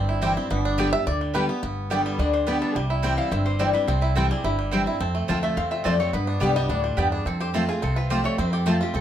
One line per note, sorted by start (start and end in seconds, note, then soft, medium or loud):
0.00 0.36 G1 medium
0.00 0.48 G2 loud
0.00 1.21 G3 medium
0.00 0.34 C4 medium
0.00 0.54 E4 medium
0.00 0.22 G4 medium
0.09 0.48 E4 medium
0.22 0.36 E3 medium
0.22 0.36 G3 medium
0.22 0.31 C4 medium
0.22 0.36 C4 medium
0.22 0.31 E4 loud
0.22 0.35 E4 loud
0.22 0.78 G4 medium
0.22 0.31 C5 loud
0.22 0.31 G5 loud
0.36 0.50 C4 medium
0.36 0.51 C4 medium
0.36 0.50 E4 medium
0.50 0.93 G1 loud
0.50 1.04 G2 loud
0.50 0.90 B3 medium
0.50 1.45 D4 medium
0.65 0.92 D4 medium
0.78 0.92 D3 medium
0.78 0.92 G3 medium
0.78 0.87 B3 loud
0.78 0.92 B3 medium
0.78 0.87 G4 loud
0.78 1.18 G4 medium
0.78 0.92 G4 medium
0.78 0.88 D5 loud
0.78 0.88 G5 loud
0.93 1.07 B3 medium
0.93 1.06 G4 medium
0.93 1.07 E5 loud
1.07 1.49 D2 medium
1.07 1.33 D3 medium
1.07 1.34 D5 loud
1.21 1.60 G3 medium
1.34 1.48 D3 medium
1.34 1.49 G3 medium
1.34 1.43 B3 medium
1.34 1.49 B3 medium
1.34 1.43 G4 medium
1.34 1.48 G4 loud
1.34 1.61 B4 medium
1.34 1.44 D5 medium
1.34 1.44 G5 loud
1.49 1.62 B3 medium
1.49 1.63 B3 medium
1.49 1.62 G4 medium
1.63 2.05 G1 medium
1.63 2.16 G2 loud
1.63 1.90 B3 medium
1.90 2.18 D3 medium
1.90 2.18 G3 loud
1.90 2.00 B3 medium
1.90 2.31 B3 medium
1.90 2.18 B3 medium
1.90 2.00 G4 medium
1.90 2.19 G4 medium
1.90 2.00 D5 medium
1.90 2.00 G5 loud
2.06 2.33 G3 medium
2.19 2.61 D2 medium
2.19 2.45 D3 medium
2.19 2.59 D4 medium
2.19 2.33 D5 medium
2.33 2.76 G3 medium
2.33 2.47 C5 medium
2.47 2.74 D3 medium
2.47 2.74 G3 medium
2.47 2.56 B3 loud
2.47 2.76 B3 medium
2.47 2.74 B3 loud
2.47 2.56 G4 medium
2.47 2.74 G4 medium
2.47 2.61 B4 medium
2.47 2.56 D5 medium
2.47 2.57 G5 loud
2.62 2.75 D4 medium
2.62 2.76 A4 loud
2.75 3.18 C2 medium
2.75 3.29 C3 loud
2.75 3.03 G3 medium
2.75 2.84 G4 medium
2.90 3.17 E4 medium
3.03 3.30 E3 medium
3.03 3.30 G3 medium
3.03 3.43 G3 medium
3.03 3.12 C4 medium
3.03 3.31 C4 loud
3.03 3.12 E4 medium
3.03 3.31 E4 medium
3.03 3.13 C5 medium
3.03 3.13 G5 loud
3.17 3.57 E4 medium
3.17 3.31 F5 loud
3.31 3.74 G1 medium
3.31 3.85 G2 medium
3.31 3.88 C4 medium
3.31 3.45 E5 medium
3.46 3.73 G3 medium
3.46 3.59 C5 loud
3.59 3.73 E3 medium
3.59 3.74 G3 medium
3.59 3.69 C4 medium
3.59 3.74 C4 medium
3.59 3.69 E4 loud
3.59 3.99 E4 soft
3.59 3.73 E4 medium
3.59 3.69 C5 medium
3.59 3.73 D5 loud
3.59 3.69 G5 loud
3.73 4.14 G3 medium
3.73 3.88 C4 soft
3.73 3.87 E4 medium
3.73 3.87 B4 loud
3.87 4.30 C2 medium
3.87 4.42 C3 loud
3.87 4.15 C4 medium
3.87 4.01 C5 medium
4.01 4.41 E4 medium
4.01 4.15 B4 medium
4.15 4.30 E3 loud
4.15 4.30 G3 medium
4.15 4.25 C4 medium
4.15 4.56 C4 medium
4.15 4.30 C4 loud
4.15 4.25 E4 loud
4.15 4.29 E4 medium
4.15 4.30 A4 medium
4.15 4.25 C5 loud
4.15 4.26 G5 loud
4.31 4.57 G3 medium
4.31 4.45 C4 medium
4.31 4.44 E4 medium
4.31 4.44 G#4 medium
4.44 4.87 G1 medium
4.44 4.98 G2 medium
4.44 4.84 E4 medium
4.44 4.71 G4 medium
4.59 4.98 G3 medium
4.71 4.86 E3 medium
4.71 4.86 G3 medium
4.71 4.81 C4 medium
4.71 4.99 C4 medium
4.71 4.87 C4 medium
4.71 4.81 E4 medium
4.71 4.85 E4 medium
4.71 4.82 C5 loud
4.71 4.82 G5 loud
4.86 5.01 C4 soft
4.86 5.00 E4 medium
4.86 5.01 E4 medium
5.00 5.22 F2 medium
5.00 5.54 F2 loud
5.00 5.40 C4 medium
5.00 5.27 A5 medium
5.15 5.42 A3 medium
5.28 5.53 D2 medium
5.28 5.55 F3 medium
5.28 5.56 A3 medium
5.28 5.38 C4 medium
5.28 5.56 C4 medium
5.28 5.38 F4 medium
5.28 5.69 F4 medium
5.28 5.56 F4 medium
5.28 5.38 C5 medium
5.28 5.43 G5 medium
5.28 5.38 A5 loud
5.43 5.82 A3 medium
5.43 5.57 E5 medium
5.57 5.81 E2 medium
5.57 6.11 C3 medium
5.57 5.97 C4 medium
5.57 5.71 F5 loud
5.71 6.11 F4 medium
5.71 5.84 E5 loud
5.84 6.09 F2 medium
5.84 5.99 F3 medium
5.84 6.14 A3 medium
5.84 5.99 A3 medium
5.84 5.94 C4 medium
5.84 6.00 C4 medium
5.84 5.94 F4 medium
5.84 5.99 F4 medium
5.84 5.94 C5 medium
5.84 5.99 D5 medium
5.84 5.94 A5 loud
6.00 6.13 C4 medium
6.00 6.14 C4 soft
6.00 6.13 F4 medium
6.00 6.13 C#5 loud
6.13 6.34 G2 medium
6.13 6.67 G2 loud
6.13 6.40 B3 medium
6.13 6.28 B4 medium
6.27 6.67 D4 medium
6.27 6.41 C5 medium
6.40 6.65 C2 medium
6.40 6.55 D3 medium
6.40 6.56 G3 medium
6.40 6.50 B3 medium
6.40 6.81 B3 medium
6.40 6.56 B3 medium
6.40 6.50 G4 loud
6.40 6.55 G4 loud
6.40 6.50 D5 medium
6.40 6.55 D5 medium
6.40 6.51 G5 loud
6.56 6.83 G3 medium
6.56 6.70 B3 soft
6.56 6.69 G4 medium
6.56 6.69 D#5 loud
6.69 6.93 D2 medium
6.69 6.97 A2 medium
6.69 7.09 D4 medium
6.69 6.84 D5 medium
6.84 7.23 G3 medium
6.84 6.98 C5 loud
6.97 7.21 E2 medium
6.97 7.25 G2 medium
6.97 7.06 B3 medium
6.97 7.26 B3 medium
6.97 7.07 G4 medium
6.97 7.13 B4 medium
6.97 7.07 D5 loud
6.97 7.07 G5 loud
7.12 7.26 D4 medium
7.12 7.26 G#4 medium
7.25 7.68 F2 medium
7.25 7.80 F2 loud
7.25 7.66 C4 medium
7.25 7.40 A4 medium
7.41 7.80 G4 medium
7.41 7.49 C5 medium
7.54 7.68 F3 medium
7.54 7.94 A3 medium
7.54 7.68 A3 medium
7.54 7.63 C4 loud
7.54 7.68 C4 loud
7.54 7.63 F4 loud
7.54 7.68 F4 loud
7.54 7.64 C5 loud
7.54 7.64 A5 loud
7.69 7.83 C4 medium
7.69 7.95 F4 medium
7.69 7.82 F4 medium
7.69 7.82 G#4 medium
7.82 8.25 C2 medium
7.82 8.36 C3 medium
7.82 8.22 C4 medium
7.82 7.97 A4 medium
7.96 8.36 F4 medium
7.96 8.11 B4 loud
8.10 8.37 F3 medium
8.10 8.37 A3 medium
8.10 8.19 C4 medium
8.10 8.38 C4 medium
8.10 8.19 F4 loud
8.10 8.38 F4 medium
8.10 8.50 G4 medium
8.10 8.20 C5 loud
8.10 8.25 C5 medium
8.10 8.20 A5 loud
8.24 8.63 A3 medium
8.24 8.38 C#5 loud
8.38 8.81 F2 loud
8.38 8.92 F2 loud
8.38 8.78 C4 medium
8.38 8.54 C5 medium
8.53 8.92 G4 medium
8.53 8.66 A4 loud
8.66 8.80 F3 loud
8.66 8.80 A3 loud
8.66 9.01 A3 medium
8.66 8.76 C4 loud
8.66 8.80 C4 loud
8.66 8.76 F4 medium
8.66 8.79 F4 medium
8.66 8.81 F4 medium
8.66 8.76 C5 medium
8.66 8.76 A5 loud
8.81 8.95 C4 medium
8.81 8.94 F4 medium
8.81 9.01 F4 medium
8.81 8.95 G4 loud
8.94 9.01 C2 medium
8.94 9.01 E2 medium
8.94 9.01 C4 medium
8.94 9.01 A4 medium